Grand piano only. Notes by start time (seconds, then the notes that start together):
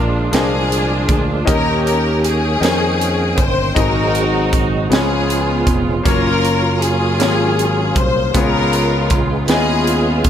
Already playing: A#2 D4 F4 G#4 A#4 F5
0.31 D4 F4 G#4 A#4 C5
0.41 D5
1.45 D#3 C#4 D#4 G4 A#4 D#5
2.59 C#4 D#4 A#4 C5 G5
3.75 G#2 C4 D#4 F#4 G#4 D#5
4.90 C#3 B3 C#4 F4 G#4 C#5
6.03 F#3 A#3 C#4 F4 C#5
7.18 F#3 A#3 C#4 F4 G4
7.28 G#4
8.34 C#3 B3 C#4 F4 G#4 C#5
9.48 B3 C#4 E4 G#4 D#5
9.55 F4